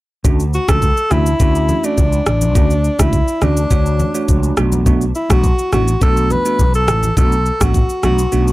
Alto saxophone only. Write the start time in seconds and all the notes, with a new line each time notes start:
0.54 F#4
0.69 A4
1.12 E4
1.85 D4
2.27 D4
3.00 E4
3.43 D4
5.15 E4
5.31 F#4
5.73 F#4
6.02 A4
6.31 B4
6.75 A4
7.18 A4
7.62 F#4
8.04 F#4